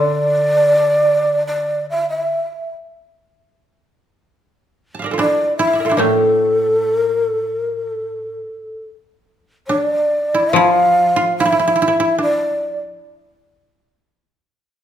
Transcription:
Already playing: koto D3, shakuhachi C#5
0.02 shakuhachi D5
1.47 shakuhachi D5
1.90 shakuhachi E5
2.10 shakuhachi E5
4.95 koto A5
4.99 koto E5 F5
5.04 koto A#4 D5
5.11 koto F4 A4
5.18 koto D4 E4, shakuhachi D5
5.57 koto E4, shakuhachi E5
5.67 koto F5
5.73 koto D5 E5
5.80 koto A#4
5.85 koto F4 A4
5.90 koto D4 E4
5.97 koto A2 A3 A#3, shakuhachi A4
7.02 shakuhachi A#4
7.23 shakuhachi A4
7.59 shakuhachi A#4
7.81 shakuhachi A4
9.67 koto D4, shakuhachi C#5
9.83 shakuhachi D5
10.34 koto E4
10.53 koto F3 E4, shakuhachi F5
10.70 koto F4
11.16 koto F4
11.38 koto E4, shakuhachi E5
11.45 koto E4
11.52 koto E4
11.59 koto E4
11.68 koto E4
11.76 koto E4
11.82 koto E4
11.88 koto E4
12.00 koto E4
12.18 koto D4
12.23 shakuhachi D5

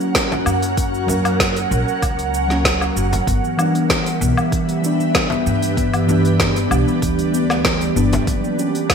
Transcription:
Already playing: synth keys F#3 A#3 C#4, ambient pad C#4 F#4 A#4 F#5
0.00 cabasa
0.15 kick, snare, open hi-hat, cabasa
0.32 frame drum, cabasa
0.46 upright bass F#2, cabasa, low woodblock
0.62 open hi-hat, cabasa
0.77 kick, open hi-hat, cabasa
0.94 cabasa
1.07 synth keys F#3 A#3, frame drum, cabasa
1.11 synth keys C#4
1.25 open hi-hat, cabasa, low woodblock
1.40 kick, snare, open hi-hat, cabasa
1.56 open hi-hat, cabasa
1.71 upright bass A#1, cabasa
1.88 cabasa
2.02 upright bass C#2, kick, open hi-hat, cabasa, low woodblock
2.19 open hi-hat, cabasa
2.34 cabasa
2.48 synth keys F#3 A#3 C#4, snare, cabasa
2.65 kick, snare, open hi-hat, cabasa
2.81 cabasa, low woodblock
2.96 upright bass F#1, cabasa
3.13 open hi-hat, frame drum, cabasa
3.27 upright bass G1, steel tongue drum B3, ambient pad D4 G4 B4 E5, kick, open hi-hat, cabasa
3.44 steel tongue drum E3, cabasa
3.57 synth keys E3 B3 D4, steel tongue drum G3, cabasa, low woodblock
3.75 steel tongue drum B3, open hi-hat, cabasa
3.90 steel tongue drum E3, kick, snare, open hi-hat, cabasa
4.06 steel tongue drum G3, open hi-hat, cabasa
4.21 upright bass B1, steel tongue drum B3, cabasa
4.37 steel tongue drum E3, cabasa, low woodblock
4.52 steel tongue drum E3, kick, open hi-hat, cabasa
4.69 steel tongue drum G3, open hi-hat, cabasa
4.82 synth keys E3 B3 D4, steel tongue drum B3, cabasa
5.00 steel tongue drum E3, cabasa
5.15 kick, snare, open hi-hat, cabasa, low woodblock
5.30 steel tongue drum B3, frame drum, cabasa
5.46 upright bass G2, steel tongue drum E3, cabasa
5.62 steel tongue drum G3, open hi-hat, cabasa
5.77 steel tongue drum B3, ambient pad D5, kick, open hi-hat, cabasa
5.93 steel tongue drum E3, open hi-hat, cabasa, low woodblock
6.06 synth keys E3 B3, steel tongue drum E3, frame drum, cabasa
6.10 synth keys D4
6.25 open hi-hat, cabasa
6.40 kick, snare, open hi-hat, cabasa
6.56 steel tongue drum E3, open hi-hat, cabasa
6.71 upright bass B1, steel tongue drum G3, cabasa, low woodblock
6.87 steel tongue drum B3, cabasa
7.02 upright bass D2, steel tongue drum E3, kick, open hi-hat, cabasa
7.18 steel tongue drum G3, open hi-hat, cabasa
7.33 steel tongue drum B3, cabasa
7.50 steel tongue drum E3, snare, cabasa, low woodblock
7.64 steel tongue drum E3, kick, snare, open hi-hat, cabasa
7.81 steel tongue drum G3, open hi-hat, cabasa
7.95 upright bass G1, synth keys E3 B3 D4, steel tongue drum B3, cabasa
8.13 open hi-hat, frame drum, cabasa
8.27 upright bass F#1, steel tongue drum F#3, ambient pad C#4 F#4 A#4 F#5, kick, open hi-hat, cabasa
8.44 steel tongue drum A#3, cabasa
8.58 synth keys F#3 A#3 C#4, steel tongue drum C#4, cabasa
8.75 steel tongue drum F#3, open hi-hat, cabasa
8.89 steel tongue drum A#3, kick, snare, open hi-hat, cabasa, low woodblock

